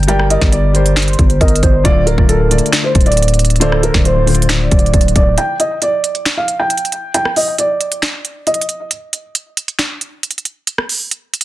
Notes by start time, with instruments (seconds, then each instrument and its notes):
Already playing: 808-style bass G1, grand piano G3 G4 A#4 D5
0.03 closed hi-hat
0.07 grand piano G3 G4 A#4 D5, soft synth lead A#4, felt piano G5, closed hi-hat
0.19 cross-stick
0.30 felt piano D#5, closed hi-hat
0.41 808-style bass G1, grand piano G3 G4 A#4 D5, kick, snare
0.52 felt piano D5, soft synth lead D5, closed hi-hat
0.74 grand piano G3 G4 A#4 C5, closed hi-hat
0.86 closed hi-hat
0.96 soft synth lead C5, finger snap, snare, closed hi-hat
1.02 closed hi-hat
1.08 closed hi-hat
1.13 closed hi-hat
1.19 808-style bass G1, kick, closed hi-hat
1.30 closed hi-hat
1.41 808-style bass G1, soft synth lead A#4, felt piano D#5, kick, closed hi-hat
1.48 closed hi-hat
1.56 closed hi-hat
1.63 808-style bass G1, soft synth lead C5, kick, closed hi-hat
1.84 808-style bass D1, grand piano D3 A3 F4 D5, felt piano D5, soft synth lead D5, kick, closed hi-hat
2.06 felt piano A#4, closed hi-hat
2.17 808-style bass D1, grand piano D3 A3 F4 D5, kick
2.29 felt piano A4, soft synth lead A#4, closed hi-hat
2.50 grand piano D3 A3 F4 D5, closed hi-hat
2.58 closed hi-hat
2.66 closed hi-hat
2.73 finger snap, snare, closed hi-hat
2.84 felt piano C5
2.95 808-style bass D1, kick, closed hi-hat
3.01 closed hi-hat
3.06 felt piano D5, closed hi-hat
3.12 closed hi-hat
3.17 closed hi-hat
3.23 closed hi-hat
3.28 closed hi-hat
3.34 closed hi-hat
3.39 closed hi-hat
3.45 closed hi-hat
3.50 closed hi-hat
3.56 closed hi-hat
3.60 grand piano D3 A3 F4 C5, soft synth lead A4, felt piano D5, closed hi-hat
3.72 cross-stick
3.83 felt piano A#4, closed hi-hat
3.94 808-style bass D1, grand piano D3 A3 F4 D5, kick, snare
4.05 soft synth lead C5, felt piano C5, closed hi-hat
4.26 grand piano D3 A3 F4 C5, closed hi-hat, open hi-hat
4.35 closed hi-hat
4.42 closed hi-hat
4.49 soft synth lead D5, finger snap, snare, closed hi-hat
4.71 808-style bass D1, kick, closed hi-hat
4.79 closed hi-hat
4.86 closed hi-hat
4.94 808-style bass D1, kick, closed hi-hat
5.01 closed hi-hat
5.08 closed hi-hat
5.16 808-style bass D1, felt piano D5, kick, closed hi-hat
5.38 felt piano G5, closed hi-hat
5.60 felt piano D#5, closed hi-hat
5.82 felt piano D5, closed hi-hat
6.04 closed hi-hat
6.15 closed hi-hat
6.25 finger snap, snare, closed hi-hat
6.37 felt piano F5
6.48 closed hi-hat
6.59 felt piano G5
6.70 closed hi-hat
6.78 closed hi-hat
6.85 closed hi-hat
6.92 closed hi-hat
7.14 felt piano G5, closed hi-hat
7.25 cross-stick
7.36 felt piano D#5, open hi-hat
7.58 felt piano D5, closed hi-hat
7.81 closed hi-hat
7.92 closed hi-hat
8.02 finger snap, snare, closed hi-hat
8.25 closed hi-hat
8.47 felt piano D#5, closed hi-hat
8.54 closed hi-hat
8.61 closed hi-hat
8.69 closed hi-hat
8.91 closed hi-hat
9.13 closed hi-hat
9.35 closed hi-hat
9.57 closed hi-hat
9.68 closed hi-hat
9.79 finger snap, snare, closed hi-hat
10.01 closed hi-hat
10.23 closed hi-hat
10.31 closed hi-hat
10.38 closed hi-hat
10.45 closed hi-hat
10.67 closed hi-hat
10.78 cross-stick
10.89 open hi-hat
11.11 closed hi-hat
11.34 closed hi-hat
11.41 closed hi-hat